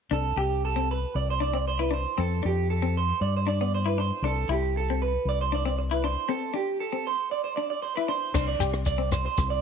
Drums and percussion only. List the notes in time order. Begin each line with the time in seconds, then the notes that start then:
8.34 kick, cross-stick, crash, shekere
8.60 closed hi-hat, shekere
8.73 cross-stick
8.85 kick, shekere
9.12 cross-stick, closed hi-hat, shekere
9.37 kick, cross-stick, shekere